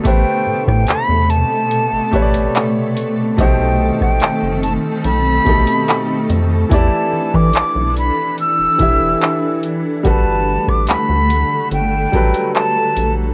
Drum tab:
HH |x---x-x-x-xxx-x-|x---x-x-x-xxx-x-|x---x-x-x-x-x-x-|x---x-x-x-xxx-x-|
CP |----x-------x---|----x-------x---|----x-------x---|----x-------x---|
SD |---r------------|---r------------|----------------|---r------------|
BD |o--o------o-----|o--o------o-----|o--o------o-----|o--o------o-----|